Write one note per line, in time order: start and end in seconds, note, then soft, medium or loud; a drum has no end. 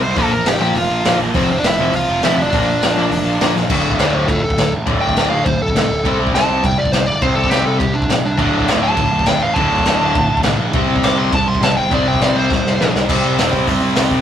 0.00 0.13 C2 medium
0.00 0.15 C3 medium
0.00 0.16 G3 medium
0.00 0.16 C4 medium
0.00 0.17 C5 medium
0.00 0.17 C6 loud
0.16 0.39 A#1 medium
0.16 0.29 A#2 medium
0.16 0.29 F3 medium
0.16 0.29 A#3 loud
0.16 0.31 A4 medium
0.16 0.33 A5 medium
0.16 kick loud
0.16 open hi-hat medium
0.33 0.46 A#4 medium
0.33 0.48 A#5 loud
0.46 0.57 A#1 medium
0.46 0.61 G4 medium
0.46 0.61 G5 loud
0.46 snare loud
0.46 open hi-hat medium
0.60 0.72 A#1 medium
0.60 0.73 A#2 medium
0.60 0.73 F3 medium
0.60 0.74 A#3 medium
0.60 0.75 G4 medium
0.60 0.77 G5 medium
0.74 0.86 F1 loud
0.74 1.17 F4 medium
0.74 1.17 F5 medium
0.74 open hi-hat medium
0.89 1.01 A#1 medium
0.89 1.05 A#2 medium
0.89 1.07 F3 medium
0.89 1.04 A#3 medium
1.04 1.16 A#1 medium
1.04 1.18 A#2 loud
1.04 1.18 F3 loud
1.04 1.18 A#3 loud
1.04 snare loud
1.04 open hi-hat medium
1.19 1.31 A#1 medium
1.34 1.56 F1 medium
1.34 1.47 F2 medium
1.34 1.47 C3 medium
1.34 1.47 F3 loud
1.34 1.49 C4 medium
1.34 1.48 C5 medium
1.34 kick loud
1.34 open hi-hat medium
1.51 1.57 C4 medium
1.51 1.58 C5 medium
1.58 1.65 D4 medium
1.58 1.66 D5 medium
1.64 1.75 F1 medium
1.64 1.92 E4 medium
1.64 1.96 E5 medium
1.64 snare loud
1.64 open hi-hat medium
1.79 1.90 F1 medium
1.79 1.92 F2 medium
1.79 1.92 C3 loud
1.79 1.92 F3 loud
1.93 2.04 C2 loud
1.93 2.22 F4 medium
1.93 2.24 F5 medium
1.93 open hi-hat medium
2.08 2.19 F1 medium
2.08 2.24 F2 medium
2.08 2.23 C3 medium
2.08 2.27 F3 medium
2.21 2.33 F1 medium
2.21 2.36 F2 loud
2.21 2.36 C3 medium
2.21 2.36 F3 loud
2.21 2.38 E4 medium
2.21 2.39 E5 loud
2.21 snare loud
2.21 open hi-hat medium
2.36 2.48 F1 medium
2.42 3.53 D4 medium
2.42 3.53 D5 medium
2.52 2.74 A#1 loud
2.52 2.65 A#2 medium
2.52 2.65 F3 loud
2.52 2.65 A#3 loud
2.52 kick loud
2.52 open hi-hat medium
2.82 2.93 A#1 medium
2.82 snare loud
2.82 open hi-hat medium
2.96 3.08 A#1 medium
2.96 3.08 A#2 medium
2.96 3.09 F3 medium
2.96 3.09 A#3 loud
3.11 3.22 F1 loud
3.11 open hi-hat medium
3.25 3.36 A#1 medium
3.25 3.38 A#2 medium
3.25 3.40 F3 medium
3.25 3.39 A#3 medium
3.40 3.52 A#1 medium
3.40 3.53 A#2 medium
3.40 3.53 F3 medium
3.40 3.53 A#3 loud
3.40 snare loud
3.40 open hi-hat medium
3.56 3.66 A#1 medium
3.56 snare medium
3.70 3.84 D1 medium
3.70 3.98 D2 medium
3.70 3.99 A2 medium
3.70 3.99 D3 medium
3.70 kick loud
3.70 crash loud
3.70 crash medium
3.85 3.99 D1 medium
3.92 kick medium
3.99 4.27 D1 medium
3.99 4.28 D2 medium
3.99 4.28 A2 medium
3.99 4.28 D3 loud
3.99 4.14 A4 medium
3.99 4.14 D5 medium
3.99 snare loud
3.99 crash medium
4.14 4.27 G4 medium
4.14 4.28 C5 medium
4.27 4.43 D1 medium
4.27 4.42 D2 medium
4.27 4.42 A2 medium
4.27 4.43 F4 medium
4.27 4.42 A4 medium
4.27 kick loud
4.27 crash medium
4.44 4.58 D1 medium
4.44 4.72 A4 medium
4.50 kick medium
4.58 4.73 D1 medium
4.58 4.71 D2 medium
4.58 4.71 A2 medium
4.58 snare loud
4.58 crash medium
4.73 4.87 A1 medium
4.86 5.01 D1 loud
4.86 5.15 D2 medium
4.86 5.15 A2 medium
4.86 5.15 D3 loud
4.86 kick loud
4.86 crash medium
5.01 5.16 D1 medium
5.01 5.29 G5 loud
5.09 kick medium
5.16 5.31 D1 medium
5.16 5.45 D2 medium
5.16 5.45 A2 loud
5.16 5.46 D3 loud
5.16 snare loud
5.16 crash medium
5.30 5.45 D1 medium
5.30 5.45 F5 medium
5.44 5.60 D1 loud
5.44 5.59 D2 medium
5.44 5.60 A2 medium
5.44 5.59 C5 medium
5.44 kick loud
5.44 crash medium
5.60 5.74 D1 medium
5.60 6.18 A4 loud
5.68 kick medium
5.75 5.89 C2 medium
5.75 5.89 D2 medium
5.75 5.89 A2 medium
5.75 snare loud
5.75 crash medium
5.90 6.04 D1 medium
6.05 6.19 C2 loud
6.05 6.33 C3 medium
6.05 6.33 G3 loud
6.05 6.34 C4 loud
6.05 kick loud
6.05 crash medium
6.20 6.33 C2 medium
6.27 kick medium
6.34 6.62 C2 medium
6.34 6.62 C3 medium
6.34 6.63 G3 medium
6.34 6.63 C4 loud
6.34 6.63 A5 loud
6.34 snare loud
6.34 crash medium
6.63 6.78 C2 loud
6.63 6.77 C3 medium
6.63 6.77 G3 medium
6.63 6.79 G5 medium
6.63 kick loud
6.63 crash medium
6.78 6.93 C2 medium
6.78 6.92 D5 medium
6.85 kick medium
6.92 7.08 C2 medium
6.92 7.06 C3 medium
6.92 7.06 G3 medium
6.92 7.06 C5 loud
6.92 snare loud
6.92 crash medium
7.06 7.21 G1 medium
7.06 7.22 D5 medium
7.21 7.36 C2 loud
7.21 7.49 C3 medium
7.21 7.50 G3 loud
7.21 7.51 C4 loud
7.21 7.35 C5 medium
7.21 kick loud
7.21 crash medium
7.35 7.51 C2 medium
7.35 7.50 A4 medium
7.44 kick medium
7.50 7.65 C2 medium
7.50 7.79 C3 medium
7.50 7.79 G3 medium
7.50 7.80 C4 medium
7.50 7.65 G4 medium
7.50 snare loud
7.50 crash medium
7.66 7.80 C2 medium
7.66 7.79 A4 loud
7.79 7.95 C2 medium
7.79 7.93 C3 medium
7.79 7.94 G3 medium
7.79 7.94 G4 medium
7.79 kick loud
7.79 crash medium
7.94 8.08 C2 medium
7.94 8.09 D4 loud
8.02 kick medium
8.09 8.24 A#1 medium
8.09 8.23 C3 medium
8.09 8.23 G3 medium
8.09 snare loud
8.09 crash medium
8.24 8.38 C2 medium
8.24 8.37 D4 medium
8.38 8.52 D1 medium
8.38 8.66 D2 medium
8.38 8.66 A2 medium
8.38 8.67 D3 loud
8.38 8.67 D4 loud
8.38 kick loud
8.38 crash medium
8.53 8.68 D1 medium
8.60 kick medium
8.67 8.96 D1 medium
8.67 8.96 D2 medium
8.67 8.96 A2 medium
8.67 8.97 D3 loud
8.67 snare loud
8.67 crash medium
8.81 9.25 D2 medium
8.81 9.26 A2 medium
8.81 9.25 D3 medium
8.81 9.26 A5 loud
8.97 9.11 D1 loud
8.97 9.11 D2 medium
8.97 9.11 A2 medium
8.97 kick loud
8.97 crash medium
9.11 9.26 D1 medium
9.19 kick medium
9.26 9.40 D1 medium
9.26 9.40 D2 medium
9.26 9.40 A2 medium
9.26 9.57 D3 medium
9.26 9.42 G5 medium
9.26 snare loud
9.26 crash medium
9.41 9.56 A1 medium
9.41 9.56 F5 medium
9.54 9.71 D1 loud
9.54 9.85 D2 medium
9.54 9.85 A2 medium
9.54 9.85 D3 loud
9.54 10.40 A5 loud
9.54 kick loud
9.54 crash medium
9.71 9.85 D1 medium
9.78 kick medium
9.85 10.00 D1 medium
9.85 10.15 D2 medium
9.85 10.15 A2 loud
9.85 10.15 D3 loud
9.85 snare loud
9.85 crash medium
10.00 10.14 D1 medium
10.00 10.42 D2 medium
10.00 10.43 A2 medium
10.00 10.43 D3 medium
10.15 10.29 D1 loud
10.15 10.29 D2 medium
10.15 10.29 A2 medium
10.15 kick loud
10.15 crash medium
10.30 10.44 D1 loud
10.37 kick medium
10.43 10.58 C2 medium
10.43 10.58 D2 medium
10.43 10.59 A2 medium
10.43 10.74 D3 medium
10.43 snare loud
10.43 crash medium
10.59 10.72 A#1 medium
10.73 10.88 C2 loud
10.73 11.02 C3 loud
10.73 11.03 G3 loud
10.73 11.03 C4 loud
10.73 kick loud
10.73 crash medium
10.89 11.02 C2 medium
10.96 kick medium
11.03 11.31 C2 medium
11.03 11.32 C3 medium
11.03 11.32 G3 loud
11.03 11.32 C4 loud
11.03 11.18 D6 loud
11.03 snare loud
11.03 crash medium
11.17 11.60 C3 medium
11.17 11.62 G3 medium
11.17 11.63 C4 medium
11.17 11.33 C6 loud
11.32 11.47 C2 loud
11.32 11.46 C3 medium
11.32 11.46 G3 medium
11.32 11.48 A5 medium
11.32 kick loud
11.32 crash medium
11.48 11.62 C2 medium
11.48 11.62 C6 loud
11.55 kick medium
11.62 11.76 C2 medium
11.62 11.76 C3 medium
11.62 11.76 G3 medium
11.62 11.91 C4 medium
11.62 11.77 A5 loud
11.62 snare loud
11.62 crash medium
11.77 11.91 G1 medium
11.77 11.91 G5 medium
11.91 12.05 C2 loud
11.91 12.20 C3 loud
11.91 12.20 G3 medium
11.91 12.21 C4 loud
11.91 12.07 D5 medium
11.91 kick loud
11.91 crash medium
12.06 12.20 C2 medium
12.06 12.21 G5 medium
12.14 kick medium
12.21 12.35 C2 medium
12.21 12.50 C3 medium
12.21 12.50 G3 loud
12.21 12.50 C4 loud
12.21 12.36 D5 loud
12.21 snare loud
12.21 crash medium
12.34 12.50 C2 medium
12.34 12.77 C3 medium
12.34 12.79 G3 medium
12.34 12.78 C4 medium
12.34 12.93 C5 loud
12.50 12.65 C2 loud
12.50 12.64 C3 medium
12.50 12.64 G3 medium
12.50 kick loud
12.50 snare medium
12.65 12.79 C2 loud
12.65 snare medium
12.81 12.94 A#1 medium
12.81 12.94 C3 medium
12.81 12.94 G3 medium
12.81 13.09 C4 medium
12.81 snare medium
12.95 13.08 C2 medium
12.95 snare medium
13.09 13.21 C2 medium
13.09 13.40 C3 loud
13.09 13.40 G3 loud
13.09 13.39 C4 loud
13.09 kick loud
13.09 crash loud
13.25 13.36 C2 medium
13.38 13.50 E1 medium
13.38 13.67 C3 medium
13.38 13.67 G3 medium
13.38 13.68 C4 medium
13.38 snare loud
13.38 open hi-hat medium
13.53 13.65 C2 medium
13.53 kick medium
13.67 13.79 C2 loud
13.67 13.97 C3 loud
13.67 13.97 G3 loud
13.67 13.97 C4 loud
13.67 kick medium
13.67 open hi-hat medium
13.82 13.94 C2 medium
13.95 14.08 C2 medium
13.95 14.21 C3 medium
13.95 14.21 G3 medium
13.95 14.21 C4 loud
13.95 snare loud
13.95 open hi-hat medium
14.11 14.21 C2 medium
14.11 kick medium